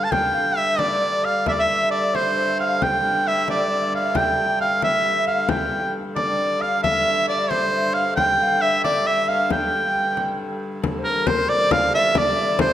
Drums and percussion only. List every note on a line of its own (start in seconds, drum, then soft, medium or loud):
0.12 frame drum medium
0.35 frame drum soft
0.79 frame drum medium
1.24 frame drum soft
1.46 frame drum medium
1.69 frame drum soft
2.15 frame drum medium
2.59 frame drum soft
2.82 frame drum medium
3.04 frame drum soft
3.48 frame drum medium
3.93 frame drum soft
4.15 frame drum medium
4.38 frame drum soft
4.60 frame drum soft
4.82 frame drum medium
5.27 frame drum soft
5.49 frame drum medium
5.71 frame drum soft
6.16 frame drum medium
6.61 frame drum soft
6.84 frame drum medium
7.07 frame drum soft
7.51 frame drum medium
8.17 frame drum medium
8.41 frame drum soft
8.85 frame drum medium
9.28 frame drum soft
9.50 frame drum medium
9.95 frame drum soft
10.17 frame drum medium
10.84 frame drum medium
11.05 frame drum soft
11.27 frame drum loud
11.71 frame drum loud
11.94 frame drum soft
12.15 frame drum medium
12.38 frame drum soft
12.59 frame drum loud